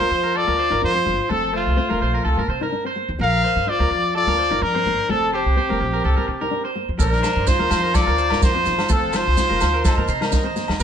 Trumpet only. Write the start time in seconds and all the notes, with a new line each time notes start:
Already playing: C5
0.37 D5
0.84 C5
1.32 A4
1.56 F4
3.22 F5
3.69 D5
4.16 D5
4.62 A#4
5.10 A4
5.34 G4
7.00 A#4
7.48 C5
7.95 D5
8.44 C5
8.92 A4
9.16 C5